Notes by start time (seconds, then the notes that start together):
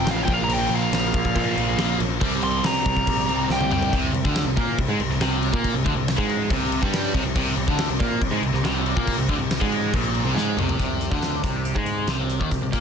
Already playing: F2 C3 F3 F4 C5 G5
0.06 A1 F2 C3 F3, snare, crash
0.11 F5
0.23 A#3 G5
0.27 A#1 A#2 F3 A#3, kick, crash
0.33 F5
0.44 A#1 A#5
0.49 crash
0.54 G5
0.69 A#1, crash
0.75 F5
0.91 A#1, snare, crash
1.14 A#1, kick, crash
1.25 kick
1.34 A#2 F3, kick, crash
1.38 A#3
1.56 A#1 F3 A#3, crash
1.60 A#2
1.77 A#1 A#2 F3 A#3, snare, crash
1.99 A#1, crash
2.20 C2 C3 G3 C4 G4 D5, kick, crash
2.42 C2 C6, crash
2.63 C2 A#5, snare, crash
2.86 C2, kick, crash
2.97 kick
3.07 A#1, kick, crash
3.28 C2 G3 C4, crash
3.32 C3
3.49 C2 C3 G3 G5, snare
3.53 C4
3.61 high tom
3.70 C2 C3 G3 C4 G5, mid tom
3.83 floor tom
3.93 C2 C3, kick, crash
4.13 C2 C3, crash
4.24 D2 D3, kick
4.35 snare, crash
4.45 C2 C3
4.57 A#2 A#3, kick, crash
4.78 C2 C3, kick, crash
4.88 G#2 G#3
5.00 C2 C3, crash
5.10 C2 C3, snare
5.21 C2 C3, snare, crash
5.42 crash
5.53 A#2 A#3, kick
5.64 kick, crash
5.74 C2 C3
5.85 D2 D3, kick, crash
5.95 C2 C3
6.08 snare, crash
6.18 G#2 G#3, kick
6.29 crash
6.50 C2 C3, kick, crash
6.72 crash
6.82 G2 G3, kick
6.93 snare, crash
7.14 C2 C3, kick, crash
7.25 C2 C3
7.34 C2 C3 C4 G4 D5, kick, crash
7.57 C2 C3, crash
7.68 D2 D3, kick
7.78 snare, crash
7.89 C2 C3
8.00 A#2 A#3, kick, crash
8.21 C2 C3, kick, crash
8.31 G#2 G#3
8.42 C2 C3, crash
8.53 C2 C3, snare
8.63 C2 C3, snare, crash
8.86 crash
8.96 A#2 A#3, kick
9.07 kick, crash
9.18 C2 C3
9.28 D2 D3, kick, crash
9.40 C2 C3
9.51 snare, crash
9.61 G#2 G#3, kick
9.72 crash
9.94 A#1 A#2, kick, crash
10.15 crash
10.24 C2 C3
10.35 G#2 G#3, snare
10.57 C2 C3, mid tom
10.69 floor tom
10.79 C2 C3 C4 G4 D5, kick, closed hi-hat
11.01 closed hi-hat
11.11 D2 D3, kick
11.22 snare, closed hi-hat
11.43 C2 C3, kick, closed hi-hat
11.65 closed hi-hat
11.75 G#2 G#3, kick
11.86 closed hi-hat
12.07 C2 C3, snare, closed hi-hat
12.29 closed hi-hat
12.40 D#2 D#3, kick
12.51 C2 C3, kick, closed hi-hat
12.61 C2 C3
12.72 A#2 A#3, kick, closed hi-hat